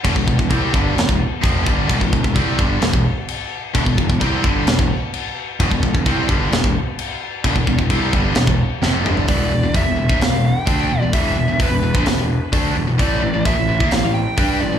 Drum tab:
CC |x---x---x---x---|x---x---x---x---|x---x---x---x---|x---x---x---x---|
HH |----------------|----------------|----------------|----------------|
SD |--------o-------|--------o-------|--------o-------|--------o-------|
T2 |----------------|----------------|----------------|----------------|
FT |----------------|----------------|----------------|----------------|
BD |ooooo-o--o--o-o-|ooooo-o--o------|ooooo-o--o------|ooooo-o--o------|

CC |x---x---x-------|----------------|----------------|----------------|
HH |----------------|o---o---o---o---|o---o---o---o---|o---o---o---o---|
SD |--------o---o---|--------o-------|--------o-------|--------o-------|
T2 |--------------o-|----------------|----------------|----------------|
FT |---------------o|----------------|----------------|----------------|
BD |ooooo-o--o------|o---o--o----o---|o---o--o----o---|o---o--o----o---|